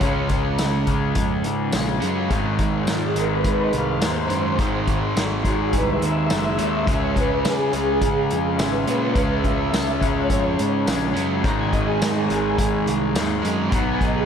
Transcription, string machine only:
0.00 0.55 C#5 loud
2.88 3.01 F4 medium
3.03 3.16 G#4 medium
3.18 3.30 A#4 medium
3.31 3.58 B4 medium
3.62 3.74 D#5 medium
3.76 4.02 F5 medium
4.04 5.14 C5 loud
5.46 5.59 F#4 loud
5.60 5.73 G#4 medium
5.75 5.88 B4 medium
5.88 6.99 E5 loud
7.01 7.15 C#5 medium
7.18 7.45 B4 medium
7.45 7.70 G#4 medium
7.71 8.27 G#4 loud
8.56 8.71 E5 medium
8.70 9.27 B4 loud
9.29 9.99 E5 medium
10.01 11.12 C#5 loud
11.43 11.57 A#5 loud
11.57 11.71 G#5 medium
11.71 11.85 D#5 medium
11.86 12.00 G#4 medium
12.02 12.15 A#4 medium
12.17 12.28 G#4 medium
12.29 12.85 G#4 loud
13.72 13.85 A#5 loud
13.88 14.01 G#5 medium
14.01 14.14 D#5 medium
14.13 14.26 G#4 loud

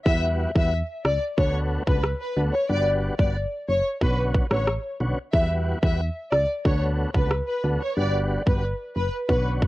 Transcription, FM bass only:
0.06 0.46 E2 loud
0.55 0.82 E2 loud
1.05 1.18 C#2 medium
1.38 1.78 D2 loud
1.87 2.14 C#2 medium
2.37 2.50 D2 medium
2.70 3.10 G1 loud
3.19 3.46 G1 medium
3.69 3.82 F#1 medium
4.01 4.42 B1 loud
4.51 4.78 A1 medium
5.00 5.14 B1 medium
5.33 5.74 E2 loud
5.83 6.10 E2 medium
6.32 6.46 C#2 medium
6.65 7.06 D2 loud
7.15 7.42 C#2 medium
7.64 7.78 D2 medium
7.97 8.38 G1 loud
8.47 8.74 G1 medium
8.96 9.09 F#1 medium
9.29 9.67 B1 loud

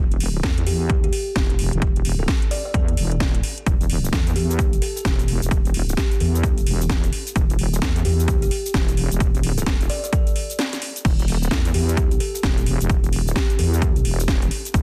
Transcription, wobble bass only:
0.00 0.42 E1 loud
0.43 0.65 E2 loud
0.66 1.11 E2 medium
1.36 1.71 E1 medium
1.73 1.80 E1 loud
1.82 2.27 E1 medium
2.74 2.96 E2 loud
2.97 3.42 E1 loud
3.67 4.11 E1 loud
4.13 4.34 E2 medium
4.36 4.80 E2 medium
5.05 5.40 E1 loud
5.42 5.50 E1 loud
5.51 5.96 E1 medium
6.20 6.65 E2 medium
6.67 7.11 E1 loud
7.36 7.80 E1 loud
7.82 8.04 E2 loud
8.05 8.50 E2 loud
8.74 9.09 E1 medium
9.12 9.19 E1 medium
9.20 9.65 E1 medium
9.66 9.88 E1 loud
11.05 11.50 E1 loud
11.51 11.73 E2 loud
11.74 12.19 E2 medium
12.43 12.78 E1 loud
12.81 12.88 E1 loud
12.90 13.34 E1 loud
13.59 14.04 E2 medium
14.05 14.50 E1 loud
14.74 14.82 E1 medium

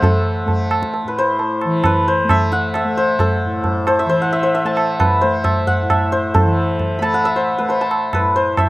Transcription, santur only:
0.00 2.96 A4 medium
0.00 1.14 C5 medium
0.00 1.87 E5 medium
0.00 1.51 F#5 loud
1.08 1.25 B4 medium
1.19 1.91 C5 medium
1.85 2.14 B4 medium
2.08 2.97 C5 medium
2.30 2.75 E5 medium
2.52 4.21 F#5 medium
2.75 3.99 E5 medium
2.97 3.87 C5 medium
3.20 6.13 A4 medium
3.87 4.09 C5 medium
3.99 4.32 E5 medium
4.10 4.43 C5 medium
4.22 5.67 F#5 medium
4.33 4.54 E5 medium
4.43 5.06 C5 medium
4.55 5.44 E5 medium
4.66 6.59 A5 medium
5.00 5.27 B4 medium
5.21 6.12 C5 medium
5.44 5.90 E5 medium
5.67 7.14 F#5 medium
5.90 7.25 E5 medium
6.12 7.05 C5 medium
6.34 8.69 A4 medium
6.99 7.81 A5 loud
6.99 7.42 B5 medium
7.14 8.69 F#5 medium
7.25 8.58 E5 loud
7.36 7.64 C5 medium
7.58 7.76 B4 medium
7.70 8.20 C5 medium
7.81 8.69 A5 medium
8.14 8.42 B4 medium
8.36 8.69 C5 medium
8.58 8.69 E5 medium

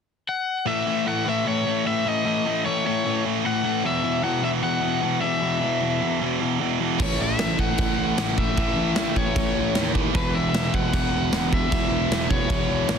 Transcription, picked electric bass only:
7.00 7.16 A1 medium
7.20 7.36 A1 medium
7.39 7.56 A1 medium
7.58 7.75 A1 medium
7.79 7.95 A1 medium
7.99 8.15 A1 medium
8.18 8.51 A1 medium
8.58 8.74 A1 medium
8.76 8.93 A1 loud
8.96 9.12 A1 medium
9.16 9.32 A1 medium
9.36 9.52 A1 loud
9.55 9.72 A1 loud
9.75 10.08 D#2 medium
10.15 10.31 E1 loud
10.33 10.50 E1 medium
10.53 10.70 E1 medium
10.74 10.90 E1 medium
10.93 11.09 E1 loud
11.13 11.29 E1 loud
11.31 11.64 E1 loud
11.72 11.88 E1 medium
11.90 12.06 E1 medium
12.10 12.27 E1 medium
12.30 12.47 E1 medium
12.51 12.67 E1 medium
12.69 12.85 E1 medium
12.89 12.98 G#1 loud

